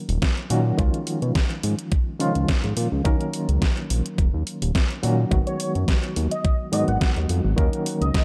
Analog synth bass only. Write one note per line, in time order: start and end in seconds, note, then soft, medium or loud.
0.09 0.19 D#1 loud
0.50 0.72 A#2 medium
0.79 0.90 C#2 loud
1.22 1.32 B2 medium
1.64 1.75 G#2 medium
2.20 2.32 C#3 medium
2.36 2.45 C#2 medium
2.64 2.74 G#2 medium
2.77 2.88 A#2 medium
2.92 3.02 C#2 medium
3.05 3.17 D#2 medium
3.49 3.59 C#2 medium
3.90 4.02 A#1 medium
4.18 4.30 D#1 medium
4.34 4.44 D#2 medium
4.62 4.72 D#1 medium
5.04 5.25 A#2 medium
5.31 5.43 G#1 loud
5.75 5.85 F#2 medium
6.16 6.28 D#2 medium
6.73 6.84 G#2 medium
6.88 6.98 G#1 medium
7.16 7.26 D#2 medium
7.29 7.41 F2 loud
7.45 7.55 G#1 medium
7.58 7.69 D#2 loud
8.01 8.11 C#2 medium